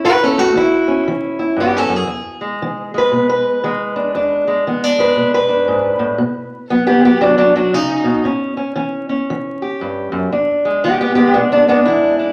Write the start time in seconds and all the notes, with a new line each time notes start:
Already playing: E4
0.04 A2 G4 B4
0.23 C#4 A4
0.38 A3 F#4
0.55 E3 E4
0.88 C#4
1.08 E3
1.39 E4
1.57 G2 B3
1.61 G4
1.76 C#4 A4
1.89 F#2
1.96 G#4
2.07 E2
2.41 G#3
2.62 E3
2.94 G#3 B4
3.12 B2
3.29 B4
3.64 E3 G#3
3.96 D4
4.14 E2 D4
4.47 G#3
4.67 E3 B3
4.84 D4
4.98 G#3 B4
5.17 B2
5.34 B4
5.49 D4
5.68 G#2
5.99 A2
6.18 B2
6.70 F#3 B3 G4
6.87 B3 G4
7.05 F#3 B3 G4
7.21 F#2 F#3 D4
7.38 F#3 D4
7.56 F#3 D4
7.73 C#3 D#4
8.04 B2
8.24 A2 C#4
8.57 C#4
8.76 E3 C#4
9.09 C#4
9.30 E3
9.62 G4
9.81 G2
10.12 F#2
10.32 E2 D4
10.65 G#3
10.84 E3 B3 G4
11.01 B3 G4
11.15 G#3 B3 G4
11.34 B2 B3 D4
11.52 B3 D4
11.68 G#3 B3 D4
11.85 E3 E4
12.19 D4